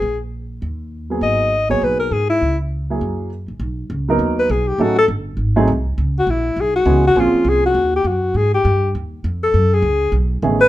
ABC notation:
X:1
M:4/4
L:1/8
Q:"Swing" 1/4=202
K:G#m
V:1 name="Alto saxophone"
G z6 z | d3 c B A G E- | E z6 z | z4 z B G =G |
F =A z6 | z F E2 G F2 F | ^E2 G F2 =G F2 | G =G3 z3 =A- |
=A G3 z3 B |]
V:2 name="Grand piano"
z6 z [F,A,B,G]- | [F,A,B,G]2 z [F,A,B,G]3 z2 | z3 [F,A,EG]3 z2 | z3 [F,A,B,DA]3 z2 |
[F,=A,CD=A] z4 [F,A,^B,DG] z2 | z6 [E,G,B,CG] z | [^E,A,^B,CG]4 z4 | z8 |
z6 [D,=A,B,CG] z |]
V:3 name="Upright bass" clef=bass
A,,,4 D,,4 | G,,,3 =A,,, B,,,2 G,,2 | C,,4 F,,3 A,,, | B,,,2 C,,2 D,,2 B,,,2 |
=A,,,2 =G,,,2 ^G,,,2 ^B,,,2 | C,,2 A,,,2 B,,,2 C,,2 | A,,, z ^B,,,2 D,,2 F,,2 | G,,2 =G,,2 D,,2 ^E,,2 |
F,,2 C,,2 B,,,2 =A,,,2 |]